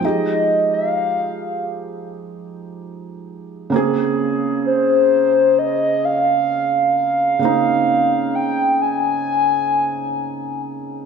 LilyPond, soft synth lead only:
\new Staff \with { instrumentName = "Soft synth lead" } { \time 4/4 \key bes \dorian \tempo 4 = 65 ees''8. f''4 r2 r16 | r4 c''4 ees''8 f''4 f''8~ | f''4 g''8 aes''2 r8 | }